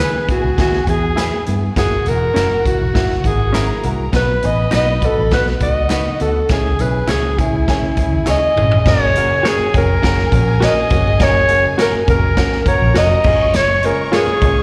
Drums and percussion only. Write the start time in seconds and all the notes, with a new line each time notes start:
0.00 clap, tambourine
0.28 kick, closed hi-hat, tambourine
0.58 kick, snare, closed hi-hat
0.73 snare
0.87 kick, closed hi-hat, tambourine
1.18 snare, clap, closed hi-hat, tambourine
1.46 closed hi-hat, tambourine
1.76 kick, snare, closed hi-hat, tambourine
2.06 closed hi-hat, tambourine
2.36 snare, clap, closed hi-hat, tambourine
2.66 kick, closed hi-hat, tambourine
2.95 kick, snare, closed hi-hat
3.10 snare
3.24 kick, closed hi-hat, tambourine
3.54 snare, clap, closed hi-hat, tambourine
3.83 closed hi-hat, tambourine
4.13 kick, snare, closed hi-hat, tambourine
4.42 closed hi-hat, tambourine
4.72 snare, clap, closed hi-hat, tambourine
5.02 kick, closed hi-hat, tambourine
5.31 kick, snare, closed hi-hat, tambourine
5.47 snare
5.60 kick, closed hi-hat, tambourine
5.90 snare, clap, closed hi-hat, tambourine
6.20 closed hi-hat, tambourine
6.49 kick, snare, closed hi-hat, tambourine
6.79 closed hi-hat, tambourine
7.08 snare, clap, closed hi-hat, tambourine
7.38 kick, closed hi-hat, tambourine
7.68 kick, snare, closed hi-hat
7.97 kick, closed hi-hat, tambourine
8.27 snare, clap, tambourine
8.57 mid tom, tambourine
8.71 floor tom
8.86 kick, snare, crash
9.15 closed hi-hat
9.45 snare, closed hi-hat
9.74 kick, closed hi-hat
10.03 kick, snare, closed hi-hat
10.18 snare
10.32 kick, closed hi-hat
10.62 snare, closed hi-hat
10.90 kick, closed hi-hat
11.20 kick, snare, closed hi-hat
11.48 closed hi-hat
11.78 snare, closed hi-hat
12.07 kick, closed hi-hat
12.37 kick, snare, closed hi-hat
12.52 snare
12.66 kick, closed hi-hat
12.95 snare, closed hi-hat
13.24 kick, crash
13.54 snare, closed hi-hat
13.83 closed hi-hat
14.13 snare, closed hi-hat
14.41 kick, closed hi-hat